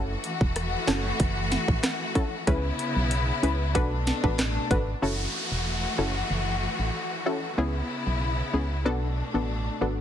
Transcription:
Already playing: fm bass F#1, string section E3 A3 F#4, synth stab C#4 E4 F#4 A4
0.24 closed hi-hat
0.41 fm bass E1, kick
0.56 cross-stick, closed hi-hat
0.87 fm bass F#1, synth stab C#4 E4 F#4 A4, snare, clap, closed hi-hat
1.20 fm bass F#1, kick, closed hi-hat
1.52 snare, closed hi-hat
1.68 fm bass A1, kick
1.83 cross-stick, snare, clap, closed hi-hat
2.15 synth stab C#4 E4 F#4 A4, kick, closed hi-hat
2.47 fm bass C#2, string section C#3 B3 E4, synth stab C#4 E4 G#4 B4, kick, closed hi-hat
2.79 closed hi-hat
2.96 fm bass B1
3.11 closed hi-hat
3.43 fm bass C#2, synth stab C#4 E4 G#4 B4, closed hi-hat
3.75 fm bass B1, string section B2 A3 D4, synth stab D4 F#4 A4 B4, kick, closed hi-hat
4.07 snare, closed hi-hat
4.24 fm bass A1, synth stab D4 F#4 A4 B4, kick
4.39 cross-stick, snare, clap, closed hi-hat
4.70 fm bass G#1, synth stab D4 F#4 A4 B4, kick, closed hi-hat
5.02 fm bass F#1, string section E3 A3 F#4, synth stab C#4 E4 F#4 A4, downlifter
5.52 fm bass E1
5.98 fm bass F#1, synth stab C#4 E4 F#4 A4
6.31 fm bass F#1
6.79 fm bass A1
7.26 synth stab C#4 E4 F#4 A4
7.58 fm bass C#2, string section C#3 B3 E4, synth stab B3 C#4 E4 G#4
8.07 fm bass B1
8.53 fm bass C#2, synth stab B3 C#4 E4 G#4
8.85 fm bass B1, string section B2 A3 D4, synth stab B3 D4 F#4 A4
9.34 fm bass A1, synth stab B3 D4 F#4 A4
9.81 fm bass G#1, synth stab B3 D4 F#4 A4

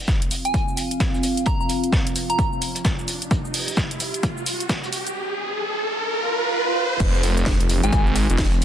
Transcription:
Already playing: analog synth pad C4 F4 F5, riser
0.08 kick, snare, closed hi-hat, shaker
0.22 closed hi-hat, shaker
0.31 closed hi-hat, open hi-hat, shaker
0.45 synth bell G#5, closed hi-hat, shaker
0.54 kick, closed hi-hat, shaker
0.68 shaker
0.77 closed hi-hat, open hi-hat, shaker
0.91 closed hi-hat, shaker
1.00 kick, snare, closed hi-hat, shaker
1.14 closed hi-hat, shaker
1.23 closed hi-hat, open hi-hat, shaker
1.37 closed hi-hat, shaker
1.45 synth bell A#5, kick, closed hi-hat, shaker
1.60 synth bell A#5, shaker
1.69 closed hi-hat, open hi-hat, shaker
1.84 closed hi-hat, shaker
1.93 kick, snare, closed hi-hat, shaker
2.07 closed hi-hat, shaker
2.16 closed hi-hat, open hi-hat, shaker
2.30 synth bell A#5, closed hi-hat, shaker
2.39 kick, closed hi-hat, shaker
2.53 shaker
2.61 closed hi-hat, open hi-hat, shaker
2.75 closed hi-hat, shaker
2.84 kick, snare, closed hi-hat, shaker
2.99 shaker
3.08 closed hi-hat, open hi-hat, shaker
3.22 closed hi-hat, shaker
3.31 analog synth pad G4, kick, closed hi-hat, shaker
3.45 shaker
3.54 open hi-hat, shaker
3.68 closed hi-hat, shaker
3.77 kick, snare, closed hi-hat, shaker
3.91 closed hi-hat, shaker
4.00 closed hi-hat, open hi-hat, shaker
4.14 closed hi-hat, shaker
4.23 kick, closed hi-hat, shaker
4.37 shaker
4.46 closed hi-hat, open hi-hat, shaker
4.60 closed hi-hat, shaker
4.69 kick, snare, closed hi-hat, shaker
4.84 closed hi-hat, shaker
4.93 closed hi-hat, open hi-hat, shaker
5.07 closed hi-hat, shaker
6.08 swell
7.00 detuned saw bass F1, analog synth pad C4 F4 F5, kick, closed hi-hat, crash, shaker
7.14 shaker
7.23 detuned saw bass F1, open hi-hat, shaker
7.37 closed hi-hat, shaker
7.46 kick, snare, closed hi-hat, shaker
7.60 detuned saw bass F1, closed hi-hat, shaker
7.70 closed hi-hat, open hi-hat, shaker
7.83 detuned saw bass G#1, synth bell G#5, closed hi-hat, shaker
7.92 detuned saw bass G#1, kick, closed hi-hat, shaker
8.07 shaker
8.15 closed hi-hat, open hi-hat, shaker
8.30 detuned saw bass F1, closed hi-hat, shaker
8.38 kick, snare, closed hi-hat, shaker
8.53 closed hi-hat, shaker

